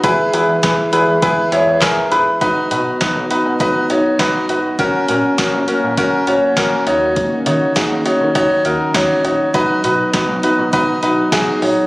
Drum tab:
HH |xxxxxxxx|xxxxxxxx|xxxxxxxx|xxxxxxxx|
CP |------x-|--------|--------|--------|
SD |--o---o-|--o---o-|--o---o-|--o---o-|
BD |o-o-o-o-|o-o-o-o-|o-o-o-o-|o-o-o-o-|

HH |xxxxxxxo|
CP |--------|
SD |--o---o-|
BD |o-o-o-o-|